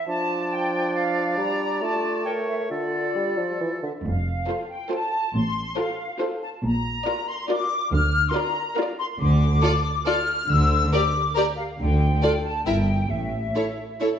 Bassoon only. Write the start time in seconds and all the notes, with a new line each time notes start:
0.07 F3
1.37 G3
1.81 A3
2.71 D3
3.16 G3
3.38 F3
3.60 E3
3.83 D3